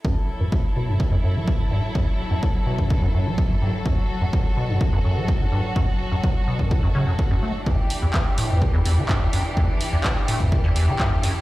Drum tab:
HH |----------------|----------------|----------------|----------------|
CP |----------------|----------------|----------------|----------------|
BD |o---o---o---o---|o---o--oo---o---|o---o---o---o---|o---o--oo---o---|

HH |--o---o---o---o-|--o---o---o---o-|
CP |----x-------x---|----x-------x---|
BD |o---o---o---o---|o---o--oo---o---|